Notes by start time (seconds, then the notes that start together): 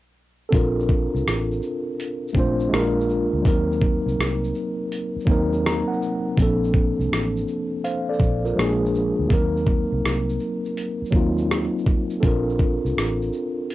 0.49 C4 D4 A4, kick
0.53 A#1 F4 A#4, closed hi-hat, shaker
0.80 shaker
0.89 kick, shaker
1.15 C2, shaker
1.27 A1, cross-stick, closed hi-hat, shaker
1.51 shaker
1.62 shaker
2.00 closed hi-hat, shaker
2.28 shaker
2.33 A#1 A3 C4 D4, kick
2.38 F4 C5, shaker
2.60 shaker
2.69 A#1 G#3 A#3 D4
2.73 F4 A#4, cross-stick, closed hi-hat, shaker
3.00 shaker
3.09 shaker
3.33 D2
3.42 D#2 F#3 A#3 C4, kick
3.47 D#4 A#4, closed hi-hat, shaker
3.72 shaker
3.81 kick, shaker
4.06 C2, shaker
4.19 C2, cross-stick, closed hi-hat, shaker
4.44 shaker
4.55 shaker
4.92 closed hi-hat, shaker
5.16 muted fingered electric bass stroke, shaker
5.25 D#2 F#3 A#3 C4, kick
5.30 D#4 A#4, shaker
5.52 shaker
5.66 A#5, cross-stick, closed hi-hat, shaker
5.88 F#5
5.93 shaker
6.02 shaker
6.36 A#1 F3 A#3 C4, kick, closed hi-hat, shaker
6.41 C#4 A4
6.47 D4
6.64 shaker
6.73 kick, shaker
6.99 C2, shaker
7.12 A1, cross-stick, closed hi-hat, shaker
7.37 shaker
7.48 shaker
7.84 C5 F5, closed hi-hat, shaker
8.09 A4 D5, shaker
8.20 A#1, kick, shaker
8.45 F4 A#4, shaker
8.55 A#1 F3 G#3 A#3, cross-stick
8.60 D4 G#4, closed hi-hat, shaker
8.86 shaker
8.95 shaker
9.19 D2
9.28 D#2 F#3 A#3 C4, kick
9.32 D#4 A#4, closed hi-hat, shaker
9.57 shaker
9.66 kick, shaker
9.92 C2
10.05 C2, cross-stick, closed hi-hat, shaker
10.29 shaker
10.40 shaker
10.65 shaker
10.77 closed hi-hat, shaker
11.02 muted fingered electric bass stroke, shaker
11.11 D#2 F#3 A#3 C4, kick
11.15 D#4 F4, shaker
11.38 shaker
11.51 cross-stick, closed hi-hat, shaker
11.78 shaker
11.86 kick, shaker
12.10 shaker
12.20 A#1 C4 D4 A4, kick, closed hi-hat, shaker
12.24 F4 A#4
12.49 shaker
12.59 kick, shaker
12.85 C2, shaker
12.97 A1, cross-stick, closed hi-hat, shaker
13.22 shaker
13.33 shaker
13.70 closed hi-hat, shaker